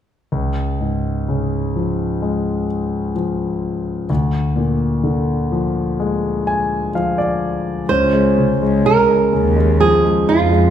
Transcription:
0, 0, Header, 1, 4, 480
1, 0, Start_track
1, 0, Key_signature, -5, "major"
1, 0, Tempo, 943396
1, 167, Time_signature, 4, 2, 24, 8
1, 3045, Tempo, 955414
1, 5415, End_track
2, 0, Start_track
2, 0, Title_t, "Nylon-string guitar"
2, 0, Program_c, 0, 24
2, 4003, Note_on_c, 0, 72, 77
2, 4487, Note_off_c, 0, 72, 0
2, 4489, Note_on_c, 0, 70, 73
2, 4948, Note_off_c, 0, 70, 0
2, 4964, Note_on_c, 0, 68, 73
2, 5207, Note_on_c, 0, 65, 66
2, 5212, Note_off_c, 0, 68, 0
2, 5415, Note_off_c, 0, 65, 0
2, 5415, End_track
3, 0, Start_track
3, 0, Title_t, "Grand piano"
3, 0, Program_c, 1, 0
3, 163, Note_on_c, 1, 37, 42
3, 259, Control_c, 1, 64, 127
3, 409, Note_on_c, 1, 44, 31
3, 654, Note_on_c, 1, 49, 35
3, 895, Note_on_c, 1, 53, 36
3, 1130, Note_on_c, 1, 56, 37
3, 1347, Note_off_c, 1, 44, 0
3, 1587, Note_off_c, 1, 49, 0
3, 1597, Note_off_c, 1, 53, 0
3, 1605, Note_on_c, 1, 53, 37
3, 2062, Note_off_c, 1, 37, 0
3, 2065, Note_off_c, 1, 56, 0
3, 2070, Note_off_c, 1, 53, 0
3, 2084, Note_on_c, 1, 38, 48
3, 2092, Control_c, 1, 64, 0
3, 2184, Control_c, 1, 64, 127
3, 2321, Note_on_c, 1, 46, 37
3, 2562, Note_on_c, 1, 50, 36
3, 2808, Note_on_c, 1, 53, 37
3, 3051, Note_on_c, 1, 56, 43
3, 3264, Note_off_c, 1, 46, 0
3, 3289, Note_on_c, 1, 80, 51
3, 3503, Note_off_c, 1, 50, 0
3, 3510, Note_off_c, 1, 80, 0
3, 3521, Note_off_c, 1, 53, 0
3, 3529, Note_on_c, 1, 53, 41
3, 3531, Note_on_c, 1, 77, 47
3, 3640, Note_off_c, 1, 77, 0
3, 3646, Note_on_c, 1, 74, 49
3, 3986, Note_off_c, 1, 38, 0
3, 3986, Note_off_c, 1, 74, 0
3, 3988, Note_off_c, 1, 56, 0
3, 3993, Note_off_c, 1, 53, 0
3, 4006, Note_on_c, 1, 61, 50
3, 4012, Control_c, 1, 64, 0
3, 4092, Control_c, 1, 64, 127
3, 4123, Note_on_c, 1, 56, 43
3, 4248, Note_on_c, 1, 49, 38
3, 4364, Note_off_c, 1, 56, 0
3, 4371, Note_on_c, 1, 56, 41
3, 4478, Note_off_c, 1, 49, 0
3, 4486, Note_on_c, 1, 49, 40
3, 4596, Note_off_c, 1, 56, 0
3, 4603, Note_on_c, 1, 56, 42
3, 4718, Note_off_c, 1, 49, 0
3, 4726, Note_on_c, 1, 49, 42
3, 4835, Note_off_c, 1, 56, 0
3, 4842, Note_on_c, 1, 56, 43
3, 4965, Note_on_c, 1, 53, 54
3, 5078, Note_off_c, 1, 56, 0
3, 5085, Note_on_c, 1, 56, 39
3, 5315, Note_off_c, 1, 56, 0
3, 5322, Note_on_c, 1, 56, 44
3, 5415, Note_off_c, 1, 49, 0
3, 5415, Note_off_c, 1, 53, 0
3, 5415, Note_off_c, 1, 56, 0
3, 5415, Note_off_c, 1, 61, 0
3, 5415, End_track
4, 0, Start_track
4, 0, Title_t, "Cello section"
4, 0, Program_c, 2, 48
4, 4002, Note_on_c, 2, 37, 62
4, 4345, Note_off_c, 2, 37, 0
4, 4362, Note_on_c, 2, 37, 67
4, 4588, Note_off_c, 2, 37, 0
4, 4724, Note_on_c, 2, 39, 77
4, 5065, Note_off_c, 2, 39, 0
4, 5205, Note_on_c, 2, 41, 72
4, 5415, Note_off_c, 2, 41, 0
4, 5415, End_track
0, 0, End_of_file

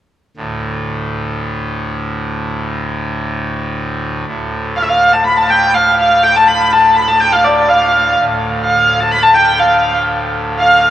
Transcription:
0, 0, Header, 1, 3, 480
1, 0, Start_track
1, 0, Tempo, 487409
1, 363, Time_signature, 2, 2, 24, 8
1, 10736, End_track
2, 0, Start_track
2, 0, Title_t, "Hurdy-gurdy"
2, 0, Program_c, 0, 110
2, 4688, Note_on_c, 0, 77, 76
2, 4748, Note_on_c, 0, 76, 64
2, 4751, Note_off_c, 0, 77, 0
2, 4820, Note_off_c, 0, 76, 0
2, 4820, Note_on_c, 0, 77, 78
2, 5051, Note_off_c, 0, 77, 0
2, 5051, Note_on_c, 0, 81, 79
2, 5164, Note_on_c, 0, 83, 90
2, 5168, Note_off_c, 0, 81, 0
2, 5293, Note_off_c, 0, 83, 0
2, 5293, Note_on_c, 0, 81, 79
2, 5420, Note_off_c, 0, 81, 0
2, 5420, Note_on_c, 0, 79, 84
2, 5658, Note_off_c, 0, 79, 0
2, 5658, Note_on_c, 0, 77, 79
2, 5889, Note_off_c, 0, 77, 0
2, 5889, Note_on_c, 0, 77, 79
2, 6138, Note_off_c, 0, 77, 0
2, 6138, Note_on_c, 0, 79, 87
2, 6265, Note_off_c, 0, 79, 0
2, 6265, Note_on_c, 0, 81, 78
2, 6381, Note_off_c, 0, 81, 0
2, 6381, Note_on_c, 0, 83, 85
2, 6626, Note_off_c, 0, 83, 0
2, 6626, Note_on_c, 0, 81, 76
2, 6861, Note_off_c, 0, 81, 0
2, 6861, Note_on_c, 0, 83, 82
2, 6972, Note_off_c, 0, 83, 0
2, 6972, Note_on_c, 0, 81, 70
2, 7095, Note_off_c, 0, 81, 0
2, 7095, Note_on_c, 0, 79, 86
2, 7213, Note_off_c, 0, 79, 0
2, 7213, Note_on_c, 0, 77, 67
2, 7335, Note_off_c, 0, 77, 0
2, 7335, Note_on_c, 0, 74, 66
2, 7573, Note_off_c, 0, 74, 0
2, 7573, Note_on_c, 0, 77, 64
2, 8049, Note_off_c, 0, 77, 0
2, 8513, Note_on_c, 0, 77, 68
2, 8868, Note_off_c, 0, 77, 0
2, 8868, Note_on_c, 0, 81, 77
2, 8980, Note_on_c, 0, 83, 99
2, 8986, Note_off_c, 0, 81, 0
2, 9091, Note_on_c, 0, 81, 78
2, 9111, Note_off_c, 0, 83, 0
2, 9205, Note_on_c, 0, 79, 83
2, 9217, Note_off_c, 0, 81, 0
2, 9449, Note_off_c, 0, 79, 0
2, 9449, Note_on_c, 0, 77, 67
2, 9825, Note_off_c, 0, 77, 0
2, 10430, Note_on_c, 0, 77, 81
2, 10736, Note_off_c, 0, 77, 0
2, 10736, End_track
3, 0, Start_track
3, 0, Title_t, "Pipe organ"
3, 0, Program_c, 1, 19
3, 360, Note_on_c, 1, 45, 53
3, 363, Note_on_c, 1, 38, 49
3, 4182, Note_off_c, 1, 45, 0
3, 4183, Note_off_c, 1, 38, 0
3, 4202, Note_on_c, 1, 45, 51
3, 4203, Note_on_c, 1, 38, 51
3, 8032, Note_off_c, 1, 38, 0
3, 8036, Note_off_c, 1, 45, 0
3, 8052, Note_on_c, 1, 38, 53
3, 8056, Note_on_c, 1, 45, 52
3, 10736, Note_off_c, 1, 38, 0
3, 10736, Note_off_c, 1, 45, 0
3, 10736, End_track
0, 0, End_of_file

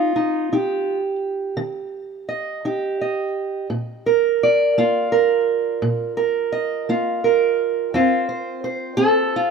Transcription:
0, 0, Header, 1, 2, 480
1, 0, Start_track
1, 0, Key_signature, -2, "major"
1, 0, Tempo, 706714
1, 2507, Time_signature, 12, 3, 24, 8
1, 6456, End_track
2, 0, Start_track
2, 0, Title_t, "Steel-string acoustic guitar"
2, 0, Program_c, 0, 25
2, 0, Note_on_c, 0, 63, 48
2, 0, Note_on_c, 0, 65, 71
2, 97, Note_off_c, 0, 63, 0
2, 107, Note_on_c, 0, 63, 43
2, 346, Note_off_c, 0, 63, 0
2, 357, Note_on_c, 0, 63, 63
2, 362, Note_on_c, 0, 67, 42
2, 656, Note_off_c, 0, 65, 0
2, 783, Note_off_c, 0, 63, 0
2, 1065, Note_on_c, 0, 51, 78
2, 1498, Note_off_c, 0, 51, 0
2, 1553, Note_on_c, 0, 75, 49
2, 1795, Note_off_c, 0, 67, 0
2, 1800, Note_on_c, 0, 63, 57
2, 1805, Note_on_c, 0, 67, 43
2, 2030, Note_off_c, 0, 75, 0
2, 2047, Note_on_c, 0, 75, 43
2, 2225, Note_off_c, 0, 63, 0
2, 2487, Note_off_c, 0, 67, 0
2, 2488, Note_off_c, 0, 75, 0
2, 2512, Note_on_c, 0, 46, 69
2, 2760, Note_on_c, 0, 70, 55
2, 2941, Note_off_c, 0, 46, 0
2, 3011, Note_on_c, 0, 74, 57
2, 3245, Note_on_c, 0, 58, 62
2, 3249, Note_on_c, 0, 65, 57
2, 3469, Note_off_c, 0, 70, 0
2, 3477, Note_on_c, 0, 70, 60
2, 3668, Note_off_c, 0, 58, 0
2, 3953, Note_on_c, 0, 46, 72
2, 4183, Note_off_c, 0, 70, 0
2, 4191, Note_on_c, 0, 70, 54
2, 4382, Note_off_c, 0, 46, 0
2, 4428, Note_off_c, 0, 74, 0
2, 4431, Note_on_c, 0, 75, 51
2, 4680, Note_on_c, 0, 58, 50
2, 4681, Note_off_c, 0, 65, 0
2, 4684, Note_on_c, 0, 65, 58
2, 4908, Note_off_c, 0, 70, 0
2, 4918, Note_on_c, 0, 70, 53
2, 5105, Note_off_c, 0, 58, 0
2, 5359, Note_off_c, 0, 75, 0
2, 5363, Note_off_c, 0, 70, 0
2, 5393, Note_on_c, 0, 41, 68
2, 5394, Note_on_c, 0, 60, 44
2, 5399, Note_off_c, 0, 65, 0
2, 5402, Note_on_c, 0, 65, 48
2, 5404, Note_on_c, 0, 72, 47
2, 5626, Note_off_c, 0, 72, 0
2, 5629, Note_on_c, 0, 72, 42
2, 5821, Note_off_c, 0, 41, 0
2, 5866, Note_off_c, 0, 72, 0
2, 5869, Note_on_c, 0, 72, 49
2, 6092, Note_on_c, 0, 69, 86
2, 6095, Note_off_c, 0, 60, 0
2, 6097, Note_on_c, 0, 60, 59
2, 6355, Note_off_c, 0, 65, 0
2, 6358, Note_on_c, 0, 65, 49
2, 6456, Note_off_c, 0, 60, 0
2, 6456, Note_off_c, 0, 65, 0
2, 6456, Note_off_c, 0, 69, 0
2, 6456, Note_off_c, 0, 72, 0
2, 6456, End_track
0, 0, End_of_file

